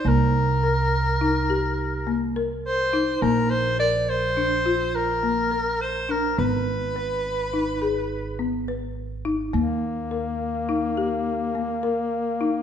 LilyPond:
<<
  \new Staff \with { instrumentName = "Soprano saxophone" } { \time 11/8 \key ees \major \tempo 4 = 104 bes'1 r8 c''4 | bes'8 c''8 d''8 c''4. bes'4. c''8 bes'8 | ces''1 r4. | r1 r4. | }
  \new Staff \with { instrumentName = "Marimba" } { \time 11/8 \key ees \major bes4 bes'4 ees'8 g'4 bes8 bes'4 ees'8 | bes4 bes'4 d'8 f'4 bes8 bes'4 d'8 | ces'4 ces''4 ees'8 aes'4 ces'8 ces''4 ees'8 | bes4 bes'4 ees'8 g'4 bes8 bes'4 ees'8 | }
  \new Staff \with { instrumentName = "Duduk" } { \time 11/8 \key ees \major r1 r4. | r1 r4. | r1 r4. | bes1~ bes4. | }
  \new Staff \with { instrumentName = "Upright bass" } { \clef bass \time 11/8 \key ees \major c,1~ c,4. | bes,,1~ bes,,4. | aes,,1~ aes,,4. | ees,1~ ees,4. | }
>>